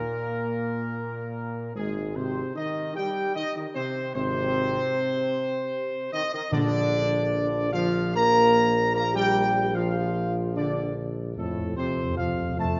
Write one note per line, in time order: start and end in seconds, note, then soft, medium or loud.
0.00 1.72 A#2 medium
0.00 1.72 A#3 medium
0.00 1.71 A#4 medium
1.75 2.42 G#1 medium
1.75 2.15 G#2 medium
1.75 2.13 G#3 medium
1.75 2.13 G#4 medium
2.15 2.53 C3 medium
2.15 2.52 C4 medium
2.15 2.55 C5 medium
2.55 2.96 D#3 medium
2.55 2.92 D#4 medium
2.55 2.93 D#5 medium
2.94 3.36 G3 medium
2.94 3.32 G4 medium
2.94 3.32 G5 loud
3.35 3.45 D#3 medium
3.35 3.44 D#4 loud
3.35 3.54 D#5 loud
3.56 3.65 D#3 medium
3.56 3.65 D#4 medium
3.56 3.65 D#5 medium
3.75 4.12 C3 medium
3.75 4.11 C4 medium
3.75 4.12 C5 loud
4.14 4.80 G#1 medium
4.14 6.09 C3 loud
4.14 6.09 C4 loud
4.14 6.08 C5 loud
6.13 6.22 D#3 loud
6.13 6.22 D#4 medium
6.13 6.31 D#5 loud
6.33 6.43 D#3 medium
6.33 6.43 D#4 medium
6.33 6.51 D#5 loud
6.52 11.33 A#1 medium
6.52 7.69 A#2 medium
6.52 7.69 D3 loud
6.52 7.69 D4 loud
6.52 7.69 D5 loud
7.72 8.13 F3 medium
7.72 8.11 F4 medium
7.72 8.12 F5 loud
8.15 8.92 A#3 loud
8.15 8.91 A#4 loud
8.15 8.92 A#5 loud
8.93 9.05 A#3 loud
8.93 9.13 A#4 loud
8.93 9.14 A#5 loud
9.14 9.71 G3 medium
9.14 9.71 G4 loud
9.14 9.72 G5 loud
9.74 10.52 F3 medium
9.74 10.52 F4 medium
9.74 10.39 F5 medium
10.54 10.94 D3 medium
10.54 10.93 D4 medium
10.54 10.94 D5 medium
11.36 11.43 F2 soft
11.36 12.80 F2 medium
11.36 11.75 A2 medium
11.36 11.74 A3 medium
11.36 11.75 A4 medium
11.44 11.50 F2 soft
11.51 11.58 F2 soft
11.59 11.65 F2 soft
11.66 11.72 F2 soft
11.73 11.79 F2 soft
11.73 12.15 C3 medium
11.73 12.14 C4 medium
11.73 12.15 C5 medium
11.80 11.87 F2 soft
11.88 11.94 F2 soft
11.95 12.02 F2 soft
12.03 12.09 F2 soft
12.11 12.17 F2 soft
12.16 12.25 F2 soft
12.16 12.55 F3 medium
12.16 12.55 F4 medium
12.16 12.56 F5 medium
12.26 12.33 F2 soft
12.34 12.40 F2 soft
12.42 12.48 F2 soft
12.49 12.56 F2 soft
12.57 12.63 F2 soft
12.57 12.80 A3 medium
12.57 12.80 A4 medium
12.57 12.80 A5 medium
12.65 12.71 F2 soft
12.72 12.78 F2 soft